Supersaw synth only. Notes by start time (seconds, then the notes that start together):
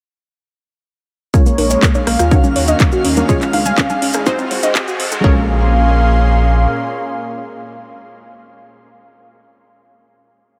1.34 G#3 A#3 C#4
2.31 D#3 A#3 F#4 F5
3.29 G#3
4.26 C4 F#4
5.24 A#2 A#3 C#4 G#4 C6